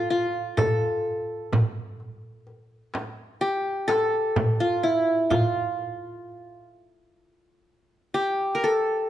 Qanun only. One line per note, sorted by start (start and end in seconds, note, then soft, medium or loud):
0.00 0.31 A4 medium
0.10 1.45 F4 medium
0.57 1.74 A4 medium
3.41 4.67 G4 medium
3.88 5.05 A4 medium
4.60 4.89 F4 medium
4.83 5.36 E4 medium
5.30 6.65 F4 medium
8.14 9.10 G4 medium
8.55 8.70 A#4 medium
8.64 9.10 A4 medium